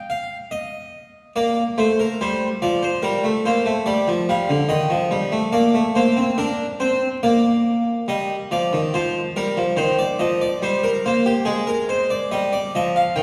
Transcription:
0.10 0.35 F5 medium
0.51 1.33 D#5 medium
1.36 1.62 A#3 medium
1.36 1.62 D5 medium
1.78 2.04 A3 medium
1.78 1.98 C5 medium
1.99 2.19 A#4 medium
2.21 2.47 G3 medium
2.21 2.47 C5 medium
2.62 2.88 F3 medium
2.62 2.82 D5 medium
2.83 3.03 C5 medium
3.02 3.23 G3 medium
3.02 3.29 A#4 medium
3.24 3.44 A3 medium
3.45 3.66 A#3 medium
3.45 3.71 C5 medium
3.66 3.86 A3 medium
3.86 4.07 G3 medium
3.86 4.12 D5 medium
4.08 4.28 F3 medium
4.29 4.49 G3 medium
4.29 4.55 F5 medium
4.49 4.70 D3 medium
4.69 4.90 D#3 medium
4.69 5.51 D#5 medium
4.90 5.11 F3 medium
5.11 5.32 G3 medium
5.32 5.53 A3 medium
5.52 5.74 A#3 medium
5.52 5.79 D5 medium
5.74 5.95 A3 medium
5.95 6.17 A#3 medium
5.95 6.22 C5 medium
6.17 6.38 C4 medium
6.38 6.64 D4 medium
6.38 6.65 A#4 medium
6.80 7.07 C4 medium
6.80 7.07 C5 medium
7.23 8.06 A#3 medium
7.23 8.06 D5 medium
8.08 8.34 G3 medium
8.08 8.35 D#5 medium
8.51 8.71 F3 medium
8.51 8.78 D5 medium
8.73 8.93 D#3 medium
8.94 9.20 F3 medium
8.94 9.20 C5 medium
9.36 9.56 G3 medium
9.36 9.62 A#4 medium
9.57 9.77 F3 medium
9.77 10.03 D#3 medium
9.77 9.98 C5 medium
9.99 10.19 D5 medium
10.19 10.46 F3 medium
10.19 10.40 D#5 medium
10.41 10.62 D5 medium
10.62 10.89 G3 medium
10.62 10.83 C5 medium
10.83 11.04 A#4 medium
11.06 11.32 A#3 soft
11.06 11.26 C5 medium
11.26 11.46 G4 medium
11.45 12.28 G#3 medium
11.45 11.67 G#4 medium
11.67 11.88 A#4 medium
11.89 12.10 C5 medium
12.10 12.31 D5 medium
12.31 12.58 G3 medium
12.31 12.52 D#5 medium
12.53 12.73 D5 medium
12.75 13.01 F3 medium
12.75 12.95 D#5 medium
12.96 13.16 F5 medium
13.16 13.23 D#3 medium
13.16 13.23 G5 medium

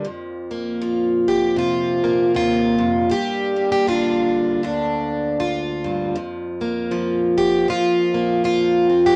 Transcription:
0.05 2.34 F2 medium
0.51 2.03 A#3 soft
0.82 3.13 F3 medium
1.28 1.58 G4 medium
1.56 3.06 C3 medium
1.56 2.35 F4 medium
2.04 3.56 A#3 soft
2.35 2.78 D#2 medium
2.35 3.11 F4 loud
2.78 3.10 F2 medium
3.10 4.63 G2 medium
3.10 3.71 G4 loud
3.56 6.12 A#3 soft
3.72 3.87 G4 loud
3.87 6.16 D3 medium
3.87 4.64 F4 medium
4.63 6.15 D2 medium
4.63 5.39 D4 medium
5.40 6.16 F4 medium
5.84 6.16 G2 medium
6.16 7.67 F2 medium
6.61 8.13 A#3 soft
6.91 8.43 F3 medium
7.38 7.68 G4 loud
7.68 9.16 F2 medium
7.68 8.44 F4 loud
8.14 9.16 A#3 soft
8.44 9.16 F3 medium
8.44 9.05 F4 medium
8.90 9.16 C4 soft
9.06 9.16 G4 medium

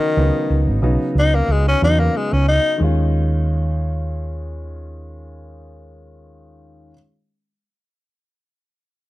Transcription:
0.00 0.80 D#3 medium
0.16 0.30 C#2 medium
0.16 0.78 C#3 medium
0.16 0.78 F#3 medium
0.16 0.78 B3 soft
0.16 0.79 D#4 medium
0.50 0.68 C#2 medium
0.67 0.79 G#1 medium
0.82 0.96 B1 medium
0.82 1.74 C#3 medium
0.82 1.74 F#3 medium
0.82 1.75 B3 medium
0.82 1.75 D#4 medium
1.15 1.41 C#2 medium
1.15 1.36 D#4 medium
1.35 1.53 A#3 medium
1.48 1.74 C#2 medium
1.48 1.66 G#3 medium
1.68 1.82 C#4 medium
1.81 2.07 E2 medium
1.81 2.73 C#3 medium
1.81 2.74 F#3 soft
1.81 2.74 B3 soft
1.81 2.74 D#4 medium
1.81 2.01 D#4 medium
1.99 2.18 A#3 medium
2.17 2.34 G#3 medium
2.33 2.58 C#2 medium
2.33 2.47 C#4 medium
2.48 2.80 D#4 medium
2.78 6.92 D#2 medium
2.78 6.90 D#3 medium
2.78 6.91 G#3 medium
2.82 6.92 C#4 medium
2.82 6.93 F4 medium

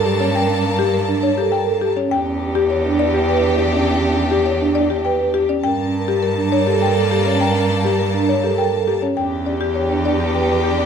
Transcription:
0.00 1.95 G2 medium
0.00 1.93 A#3 medium
0.00 1.93 A5 medium
0.05 0.25 G4 medium
0.12 0.33 A#4 medium
0.20 0.39 C#4 medium
0.20 0.39 C#5 medium
0.35 0.54 G5 medium
0.43 0.64 A#4 medium
0.49 0.69 C#4 medium
0.73 0.95 A#4 medium
0.79 0.98 G4 medium
0.94 1.13 A#4 medium
1.04 1.26 A#4 medium
1.08 1.27 D4 medium
1.23 1.42 C#5 medium
1.35 1.57 G4 medium
1.35 1.57 A4 medium
1.35 1.57 A#4 soft
1.52 1.71 A#4 medium
1.52 1.71 G5 medium
1.66 1.86 A4 medium
1.66 1.87 A#4 soft
1.82 2.01 G4 medium
1.96 2.16 C#4 medium
1.96 2.16 C#5 medium
2.11 5.49 E2 medium
2.11 5.45 D4 medium
2.11 2.33 G4 soft
2.11 5.46 G4 medium
2.11 2.30 G5 medium
2.26 2.45 C#4 medium
2.42 2.63 G4 soft
2.55 2.74 G4 medium
2.70 2.94 G4 medium
2.70 2.89 C#5 medium
2.85 3.04 D4 medium
2.99 3.25 G4 medium
2.99 3.19 D5 medium
3.14 3.33 G4 medium
3.29 3.48 B4 medium
3.29 3.48 G5 medium
3.34 3.56 G4 medium
3.44 3.63 G4 medium
3.58 3.77 G4 medium
3.65 3.86 G4 medium
3.72 3.92 C#4 medium
3.72 3.92 D5 medium
3.87 4.07 G5 medium
3.96 4.17 G4 medium
4.02 4.21 C#4 medium
4.27 4.48 G4 medium
4.31 4.51 G4 medium
4.46 4.65 C#5 medium
4.57 4.79 G4 medium
4.61 4.80 D4 medium
4.75 4.95 D5 medium
4.88 5.10 G4 soft
4.88 5.10 G4 medium
5.05 5.24 B4 medium
5.05 5.24 G5 medium
5.19 5.40 G4 soft
5.19 5.39 G4 medium
5.34 5.54 G4 medium
5.49 5.68 C#4 medium
5.49 5.68 D5 medium
5.64 9.01 G2 medium
5.64 8.98 A#3 medium
5.64 5.86 A#4 soft
5.64 5.83 G5 medium
5.64 8.98 A5 medium
5.79 5.98 C#4 medium
5.95 6.17 A#4 soft
6.08 6.27 G4 medium
6.23 6.42 A#4 medium
6.23 6.47 A#4 medium
6.38 6.57 D4 medium
6.52 6.71 C#5 medium
6.57 6.78 A#4 medium
6.67 6.86 G4 medium
6.67 6.86 A4 medium
6.82 7.01 A#4 medium
6.82 7.01 G5 medium
6.87 7.09 A#4 medium
6.96 7.16 A4 medium
7.11 7.30 G4 medium
7.18 7.39 A#4 medium
7.26 7.45 C#4 medium
7.26 7.45 C#5 medium
7.41 7.60 G5 medium
7.48 7.70 A#4 medium
7.55 7.74 C#4 medium
7.79 8.01 A#4 medium
7.85 8.04 G4 medium
7.99 8.19 A#4 medium
8.10 8.31 A#4 medium
8.14 8.33 D4 medium
8.29 8.48 C#5 medium
8.41 8.63 G4 medium
8.41 8.63 A4 medium
8.41 8.62 A#4 soft
8.58 8.77 A#4 medium
8.58 8.77 G5 medium
8.72 8.92 A4 medium
8.72 8.93 A#4 soft
8.87 9.07 G4 medium
9.02 9.21 C#4 medium
9.02 9.21 C#5 soft
9.17 10.86 E2 medium
9.17 10.86 D4 medium
9.17 9.39 G4 soft
9.17 10.86 G4 medium
9.17 9.36 G5 medium
9.31 9.51 C#4 medium
9.46 9.69 G4 soft
9.46 9.66 D5 medium
9.61 9.80 G4 medium
9.75 10.00 G4 medium
9.75 9.95 C#5 medium
9.90 10.10 D4 medium
10.05 10.31 G4 medium
10.05 10.24 D5 medium
10.20 10.39 G4 soft
10.35 10.54 B4 medium
10.35 10.54 G5 medium
10.39 10.61 G4 medium
10.49 10.68 G4 medium
10.64 10.83 G4 medium
10.71 10.86 G4 medium
10.78 10.86 C#4 medium
10.78 10.86 D5 soft

